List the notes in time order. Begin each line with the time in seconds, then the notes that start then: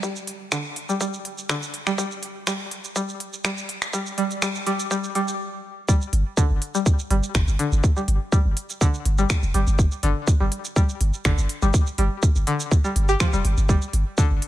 0.03 G3, kick, shaker
0.16 shaker
0.27 open hi-hat
0.52 D3, finger snap, kick, shaker
0.76 open hi-hat
0.89 G3, open hi-hat, shaker
1.01 G3, kick, shaker
1.14 shaker
1.25 open hi-hat
1.38 shaker
1.49 D3, finger snap, kick, shaker
1.62 shaker
1.74 open hi-hat
1.87 G3, finger snap, shaker
1.98 G3, kick, shaker
2.11 shaker
2.23 open hi-hat
2.47 G3, finger snap, kick, shaker
2.71 open hi-hat
2.84 open hi-hat, shaker
2.96 G3, kick, shaker
3.09 shaker
3.20 open hi-hat
3.33 shaker
3.45 G3, finger snap, kick, shaker
3.58 shaker
3.69 open hi-hat
3.82 finger snap, shaker
3.93 G3, kick, shaker
4.06 shaker
4.18 G3, open hi-hat
4.31 open hi-hat, shaker
4.42 G3, finger snap, kick, shaker
4.55 shaker
4.67 G3, open hi-hat
4.79 open hi-hat, shaker
4.91 G3, kick, shaker
5.04 shaker
5.15 G3, open hi-hat
5.28 shaker
5.88 G3, kick, shaker
6.01 shaker
6.13 G1, open hi-hat
6.37 D3, kick, shaker
6.50 G1
6.62 open hi-hat
6.75 G3, open hi-hat, shaker
6.86 kick, shaker
6.99 shaker
7.10 G1 G3, open hi-hat
7.23 shaker
7.35 G1, finger snap, kick, shaker
7.48 G1, shaker
7.59 D3, open hi-hat
7.72 G1, shaker
7.84 kick, shaker
7.97 G3, shaker
8.08 G1, open hi-hat
8.32 G3, kick, shaker
8.45 G1
8.57 open hi-hat
8.70 open hi-hat, shaker
8.81 D3, kick, shaker
8.94 shaker
9.05 G1, open hi-hat
9.18 G3, shaker
9.30 finger snap, kick, shaker
9.43 F1, shaker
9.54 G1 G3, open hi-hat
9.67 G1, shaker
9.79 kick, shaker
9.92 shaker
10.03 G1 D3, open hi-hat
10.27 kick, shaker
10.40 G1 G3
10.52 open hi-hat
10.65 open hi-hat, shaker
10.76 G3, kick, shaker
10.89 shaker
11.01 G1, open hi-hat
11.14 shaker
11.25 G1 D3, finger snap, kick, shaker
11.38 G1, shaker
11.49 open hi-hat
11.62 G1 G3, shaker
11.74 kick, shaker
11.87 shaker
11.98 G1 G3, open hi-hat
12.23 kick, shaker
12.36 G1, shaker
12.47 D3, open hi-hat
12.60 open hi-hat, shaker
12.71 kick, shaker
12.84 G3, shaker
12.96 G1, open hi-hat
13.09 G4, shaker
13.20 F3, finger snap, kick, shaker
13.33 F1 G3, shaker
13.45 G1, open hi-hat
13.57 G1, shaker
13.69 G3, kick, shaker
13.82 shaker
13.93 G1, open hi-hat
14.18 D3, kick, shaker
14.31 G1
14.42 open hi-hat